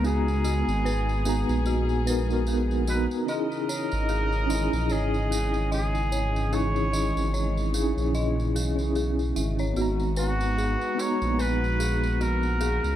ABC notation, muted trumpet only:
X:1
M:4/4
L:1/8
Q:"Swing 16ths" 1/4=74
K:G#m
V:1 name="Muted trumpet"
G6 z B | A4 G2 G2 | c3 z4 z | z F2 c B2 A2 |]